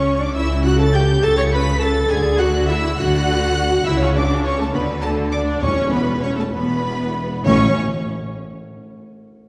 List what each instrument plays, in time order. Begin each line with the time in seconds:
Already playing: double bass section C#2, cello section C#3, viola section C#4, violin section C#5 C#6
0.19 viola section D4, violin section D5 D6
0.34 double bass section C#2, cello section C#3, viola section E4, violin section E5 E6
0.64 viola section F#4, violin section F#5 F#6
0.78 viola section A4, violin section A5 A6
0.93 viola section G4, violin section G5 G6
1.22 double bass section C#2, cello section C#3, viola section A4, violin section A5 A6
1.37 viola section C#5, violin section C#6 C#7
1.51 viola section B4, violin section B5 B6
1.79 viola section A4, violin section A5 A6
2.09 double bass section D2, cello section D3, viola section G#4, violin section G#5 G#6
2.38 viola section F#4, violin section F#5 F#6
2.67 viola section E4, violin section E5 E6
2.96 double bass section D2, cello section D3, viola section F#4, violin section F#5 F#6
3.84 double bass section C#2, cello section C#3, viola section E4, violin section E5 E6
3.98 viola section C#4, violin section C#5
4.03 violin section C#6
4.14 viola section D4, violin section D5 D6
4.43 viola section C#4, violin section C#5 C#6
4.58 viola section A3, violin section A4 A5
4.73 double bass section D2, cello section D3, viola section B3, violin section B4 B5
5.02 viola section A3, violin section A4 A5
5.30 viola section D4, violin section D5 D6
5.60 double bass section E1, cello section E2, timpani E2, viola section C#4, violin section C#5 C#6
5.91 viola section B3, violin section B4 B5
6.21 viola section C#4, violin section C#5 C#6
6.36 viola section A3, violin section A4 A5
6.52 double bass section E1, cello section E2, viola section B3, violin section B4 B5
7.44 double bass section A1, cello section A2, timpani A2, viola section C#4, violin section C#5 C#6